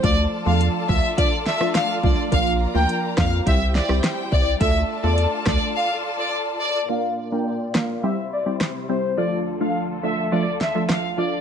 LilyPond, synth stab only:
\new Staff \with { instrumentName = "Synth stab" } { \time 4/4 \key d \minor \tempo 4 = 105 <f a d' f'>8. <f a d' f'>8. <f a d' f'>8 <f a d' f'>16 r8 <f a d' f'>8. <f a d' f'>8 | <f bes d' f'>8. <f bes d' f'>8. <f bes d' f'>8 <g c' e' g'>16 r8 <g c' e' g'>8. <g c' e' g'>8 | <a d' f' a'>8. <a d' f' a'>8. <a d' f' a'>8 r2 | <bes d' f' bes'>8. <bes d' f' bes'>8. <bes d' f' bes'>8 <g c' e' g'>16 r8 <g c' e' g'>8. <g c' e' g'>8 |
<f a d' f'>8. <f a d' f'>8. <f a d' f'>8 <f a d' f'>16 r8 <f a d' f'>8. <f a d' f'>8 | }